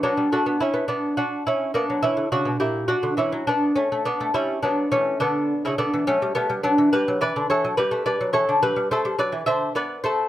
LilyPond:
<<
  \new Staff \with { instrumentName = "Lute" } { \time 12/8 \key b \minor \tempo 4. = 70 <b d'>8 <d' fis'>8 <cis' e'>8 <b d'>8 <d' fis'>8 <cis' e'>8 <b d'>8 <cis' e'>8 <d' fis'>8 <e' g'>8 <d' fis'>8 <cis' e'>8 | <b d'>8 <a cis'>8 <b d'>8 <cis' e'>8 <b d'>8 <a cis'>8 <b d'>8. <cis' e'>16 <b d'>8 <a cis'>8 <g b>8 <b d'>8 | <g' b'>8 <b' d''>8 <a' cis''>8 <g' b'>8 <b' d''>8 <a' cis''>8 <g' b'>8 <a' c''>8 <b' d''>8 <c'' e''>8 <b' d''>8 <a' c''>8 | }
  \new Staff \with { instrumentName = "Lute" } { \clef bass \time 12/8 \key b \minor fis16 g16 a16 b16 r16 b4.~ b16 ais16 fis16 e16 d16 cis16 b,16 ais,8. d16 e16 fis16 | r8. a16 r16 a16 g8 fis8 e8 d8. cis16 d16 e16 fis16 g16 a16 g16 fis16 e16 | g16 fis16 e16 d16 e16 fis16 g16 a16 g16 fis16 e16 d16 fis16 g16 a16 g16 fis16 e16 d8 b8 a8 | }
>>